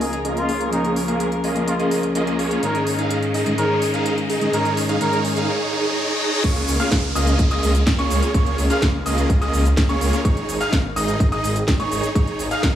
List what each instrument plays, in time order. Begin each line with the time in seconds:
Already playing: string section C#2 C#3 F3 D#4 A#4, riser
0.01 muted trumpet G#4, open hi-hat
0.13 closed hi-hat
0.25 supersaw synth A#3 C#4 F4 G#4 D#5, closed hi-hat
0.36 muted trumpet F4, closed hi-hat
0.49 supersaw synth A#3 C#4 F4 G#4 C#5, open hi-hat
0.61 closed hi-hat
0.71 clean electric guitar F3 A#3 C#4 G#4, supersaw synth A#3 C#4 F4 G#4 C#5, string section C#4, muted trumpet D#4, closed hi-hat
0.85 closed hi-hat
0.96 open hi-hat
1.08 supersaw synth A#3 C#4 F4 G#4 F5, closed hi-hat
1.20 closed hi-hat
1.32 closed hi-hat
1.44 supersaw synth A#3 C#4 F4 G#4 D#5, open hi-hat
1.55 clean electric guitar F3 A#3 C#4 G#4, closed hi-hat
1.68 muted trumpet F4, closed hi-hat
1.79 supersaw synth A#3 C#4 F4 G#4 D#5, muted trumpet F4, closed hi-hat
1.91 open hi-hat
2.03 closed hi-hat
2.15 supersaw synth A#3 C#4 F4 G#4 D#5, closed hi-hat
2.27 closed hi-hat
2.39 supersaw synth A#3 C#4 F4 G#4 C#5, open hi-hat
2.51 closed hi-hat
2.62 clean electric guitar G#2 D#3 G#3 C#4 G#4, string section G#2 D#3 G#4 D#5, supersaw synth D#4 G#4 C#5, muted trumpet A#4, closed hi-hat
2.75 closed hi-hat
2.87 open hi-hat
2.99 supersaw synth D#4 G#4 F5, closed hi-hat
3.10 closed hi-hat
3.23 closed hi-hat
3.34 supersaw synth D#4 G#4 D#5, open hi-hat
3.46 clean electric guitar G#2 D#3 G#3 C#4 G#4, closed hi-hat
3.57 clean electric guitar G#2 D#3 G#3 C#4 G#4, supersaw synth D#4 G#4 C#5, muted trumpet A#4, closed hi-hat
3.82 open hi-hat
3.94 supersaw synth D#4 G#4 F5, closed hi-hat
4.06 closed hi-hat
4.18 closed hi-hat
4.30 supersaw synth D#4 G#4 D#5, open hi-hat
4.41 clean electric guitar G#2 D#3 G#3 C#4 G#4, closed hi-hat
4.52 clean electric guitar G#2 D#3 G#3 C#4 G#4, supersaw synth D#4 G#4 C#5, muted trumpet A#4, closed hi-hat
4.65 closed hi-hat
4.77 open hi-hat
4.89 supersaw synth D#4 G#4 F5, closed hi-hat
5.00 clean electric guitar G#2 D#3 G#3 C#4 G#4, supersaw synth D#4 G#4 C#5, muted trumpet A#4, closed hi-hat
5.13 closed hi-hat
5.25 open hi-hat
5.37 supersaw synth D#4 G#4 F5, closed hi-hat
5.49 supersaw synth D#4 G#4 C#5, reverse cymbal
5.72 supersaw synth D#4 G#4 C#5
5.96 supersaw synth D#4 G#4 C#5
6.20 supersaw synth D#4 G#4 C#5
6.44 detuned saw bass C#2, supersaw synth A#3 C#4 F4 G#4 C#5, grand piano C#6, kick, closed hi-hat, crash, downlifter, shaker
6.56 closed hi-hat
6.68 detuned saw bass C#2, open hi-hat, shaker
6.80 supersaw synth A#3 C#4 F4 G#4 F5, grand piano F6, closed hi-hat, shaker
6.92 detuned saw bass C#2, kick, snare, closed hi-hat, shaker
7.15 detuned saw bass C#2, supersaw synth A#3 C#4 F4 G#4 D#5, grand piano D#6, open hi-hat, shaker
7.27 closed hi-hat, shaker
7.39 kick, closed hi-hat, shaker
7.51 supersaw synth A#3 C#4 F4 G#4 D#5, grand piano D#6, closed hi-hat
7.63 detuned saw bass C#2, open hi-hat, shaker
7.75 closed hi-hat, shaker
7.87 kick, snare, closed hi-hat, shaker
7.99 supersaw synth A#3 C#4 F4 G#4 C#5, grand piano C#6, closed hi-hat
8.10 detuned saw bass C#2, open hi-hat, shaker
8.22 closed hi-hat, shaker
8.34 detuned saw bass C#2, supersaw synth A#3 C#4 F4 G#4 C#5, grand piano C#6, kick, closed hi-hat, shaker
8.46 closed hi-hat
8.58 detuned saw bass C#2, open hi-hat, shaker
8.70 supersaw synth A#3 C#4 F4 G#4 F5, grand piano F6, closed hi-hat, shaker
8.82 detuned saw bass C#2, kick, snare, closed hi-hat, shaker
9.06 detuned saw bass C#2, supersaw synth A#3 C#4 F4 G#4 D#5, grand piano D#6, open hi-hat, shaker
9.18 closed hi-hat, shaker
9.30 detuned saw bass C#2, kick, closed hi-hat, shaker
9.42 supersaw synth A#3 C#4 F4 G#4 D#5, grand piano D#6, closed hi-hat
9.54 detuned saw bass C#2, open hi-hat, shaker
9.65 closed hi-hat, shaker
9.77 detuned saw bass C#2, kick, snare, closed hi-hat, shaker
9.89 supersaw synth A#3 C#4 F4 G#4 C#5, grand piano C#6, closed hi-hat
10.01 detuned saw bass C#2, open hi-hat, shaker
10.13 closed hi-hat, shaker
10.25 detuned saw bass G#1, supersaw synth D#4 G#4, grand piano C#6, kick, closed hi-hat, shaker
10.37 closed hi-hat
10.49 detuned saw bass G#1, open hi-hat, shaker
10.61 supersaw synth D#4 G#4 F5, grand piano F6, closed hi-hat, shaker
10.73 detuned saw bass G#1, kick, snare, closed hi-hat, shaker
10.96 detuned saw bass G#1, supersaw synth D#4 G#4 D#5, grand piano D#6, open hi-hat, shaker
11.08 closed hi-hat, shaker
11.20 detuned saw bass G#1, kick, closed hi-hat, shaker
11.32 supersaw synth D#4 G#4 D#5, grand piano D#6, closed hi-hat
11.44 detuned saw bass G#1, open hi-hat, shaker
11.56 closed hi-hat, shaker
11.68 detuned saw bass G#1, kick, snare, closed hi-hat, shaker
11.80 supersaw synth D#4 G#4 C#5, grand piano C#6, closed hi-hat
11.92 detuned saw bass G#1, open hi-hat, shaker
12.03 closed hi-hat, shaker
12.15 detuned saw bass G#1, supersaw synth D#4 G#4 C#5, grand piano C#6, kick, closed hi-hat, shaker
12.27 closed hi-hat
12.39 detuned saw bass G#1, open hi-hat, shaker
12.51 supersaw synth D#4 G#4 F5, grand piano F6, closed hi-hat, shaker
12.63 detuned saw bass G#1, kick, snare, closed hi-hat, shaker